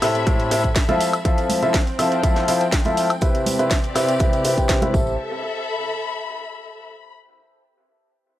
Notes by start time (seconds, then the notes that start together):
Already playing: A4 E5 B5
0.02 A2 C4 E4 G4 A4 E5, snare, open hi-hat, tambourine, high woodblock
0.15 closed hi-hat, tambourine
0.26 A2 C4 E4 G4 A4 E5, kick, closed hi-hat, tambourine, high conga
0.39 closed hi-hat, tambourine
0.51 A2 C4 E4 G4 A4 E5, open hi-hat, tambourine
0.64 kick, closed hi-hat, tambourine
0.76 kick, snare, closed hi-hat, tambourine
0.89 F3 C4 E4 F4 A4 E5, closed hi-hat, tambourine, high conga
1.01 C4, open hi-hat, tambourine
1.13 closed hi-hat, tambourine, high woodblock
1.25 F3 C4 E4 F4 A4 E5, kick, closed hi-hat, tambourine
1.38 closed hi-hat, tambourine
1.50 open hi-hat, tambourine, high conga
1.63 F3 C4 E4 F4 A4 E5, closed hi-hat, tambourine
1.74 kick, snare, closed hi-hat, tambourine
1.81 G5
1.87 closed hi-hat, tambourine
1.99 F3 C4 E4 F4 A4 E5, open hi-hat, tambourine, high woodblock
2.12 closed hi-hat, tambourine
2.23 F3 C4 E4 F4 A4 E5, kick, closed hi-hat, tambourine, high conga
2.36 snare, closed hi-hat, tambourine
2.48 F3 C4 E4 F4 A4 E5, open hi-hat, tambourine
2.61 closed hi-hat, tambourine
2.72 kick, snare, closed hi-hat, tambourine
2.84 F3 C4 E4 F4 A4 E5, closed hi-hat, tambourine, high conga
2.97 open hi-hat, tambourine
3.10 closed hi-hat, tambourine, high woodblock
3.21 C3 C4 E4 G4 B4 E5, kick, closed hi-hat, tambourine
3.35 G4 D5, closed hi-hat, tambourine
3.46 open hi-hat, tambourine, high conga
3.59 C3 C4 E4 G4 B4 E5, closed hi-hat, tambourine
3.71 kick, snare, closed hi-hat, tambourine
3.84 closed hi-hat, tambourine
3.95 C3 C4 E4 G4 B4 E5, snare, open hi-hat, tambourine, high woodblock
4.08 closed hi-hat, tambourine
4.19 C3 C4 E4 G4 B4 E5, kick, closed hi-hat, tambourine, high conga
4.33 closed hi-hat, tambourine
4.44 C3 C4 E4 G4 B4 E5, open hi-hat, tambourine
4.58 C3 C4 E4 G4 G5, kick, closed hi-hat, tambourine
4.69 kick, snare, closed hi-hat, tambourine
4.82 C3 C4 E4 G4 B4 E5, closed hi-hat, tambourine, high conga
4.94 A1 C4 E4 G4 A4 E5, kick, tambourine
5.02 E5
5.07 tambourine
5.34 B5